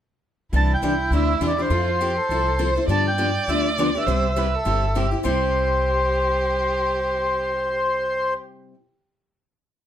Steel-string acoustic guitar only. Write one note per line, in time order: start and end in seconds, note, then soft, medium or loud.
0.53 0.72 C3 medium
0.53 0.72 E3 medium
0.53 0.72 D4 medium
0.53 0.72 G4 medium
0.82 0.93 C3 medium
0.82 0.93 E3 medium
0.82 0.93 D4 medium
0.82 0.93 G4 medium
1.12 1.31 C3 medium
1.12 1.31 E3 medium
1.12 1.31 D4 medium
1.12 1.32 G4 medium
1.41 1.51 C3 medium
1.41 1.52 E3 medium
1.41 1.52 D4 medium
1.41 1.52 G4 medium
1.58 1.70 E3 soft
1.58 1.70 D4 soft
1.58 1.70 G4 soft
1.70 1.90 F3 medium
1.70 1.90 C4 medium
1.70 1.90 E4 medium
1.70 1.90 A4 medium
2.01 2.11 F3 medium
2.01 2.11 C4 medium
2.01 2.11 E4 medium
2.01 2.11 A4 medium
2.30 2.49 F3 medium
2.30 2.50 C4 medium
2.30 2.50 E4 medium
2.30 2.50 A4 medium
2.59 2.70 F3 medium
2.59 2.69 C4 medium
2.59 2.70 E4 medium
2.59 2.70 A4 medium
2.76 2.89 C4 soft
2.76 2.89 E4 soft
2.76 2.88 A4 medium
2.89 3.08 D3 medium
2.89 3.08 F3 medium
2.89 3.08 B3 medium
2.89 3.08 D4 medium
2.89 3.08 G4 medium
3.18 3.29 D3 medium
3.18 3.29 F3 medium
3.18 3.29 B3 medium
3.18 3.29 D4 medium
3.18 3.29 G4 medium
3.48 3.67 D3 medium
3.48 3.67 F3 medium
3.48 3.67 B3 medium
3.48 3.68 D4 medium
3.48 3.68 G4 medium
3.78 3.88 D3 medium
3.78 3.88 F3 medium
3.78 3.89 B3 medium
3.78 3.89 D4 medium
3.78 3.89 G4 medium
3.95 4.08 B3 soft
3.95 4.07 D4 soft
3.95 4.06 G4 medium
4.07 4.26 C3 medium
4.07 4.26 G3 medium
4.07 4.26 C4 medium
4.07 4.27 E4 medium
4.07 4.26 G4 medium
4.36 4.47 C3 medium
4.36 4.47 G3 medium
4.36 4.47 C4 medium
4.36 4.47 E4 medium
4.36 4.47 G4 medium
4.65 4.84 C3 medium
4.65 4.84 G3 medium
4.65 4.85 C4 medium
4.65 4.85 E4 medium
4.65 4.85 G4 medium
4.95 5.06 C3 medium
4.95 5.06 G3 medium
4.95 5.06 C4 medium
4.95 5.06 E4 medium
4.95 5.06 G4 medium
5.11 5.23 C4 soft
5.11 5.24 E4 soft
5.11 5.23 G4 soft
5.23 8.73 C3 medium
5.23 8.74 G3 medium
5.23 8.75 C4 medium
5.23 8.75 E4 medium
5.23 8.75 G4 medium